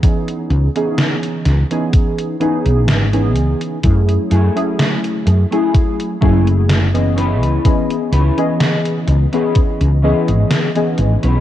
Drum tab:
HH |xxxxxxxxxxxxxxxx|xxxxxxxxxx-xxxxx|xxxxxxxxxx-xxxxx|
SD |----o-o-----o---|----o-------o---|----o-------o---|
BD |o-------o-------|o-------o-o-----|o-------o-------|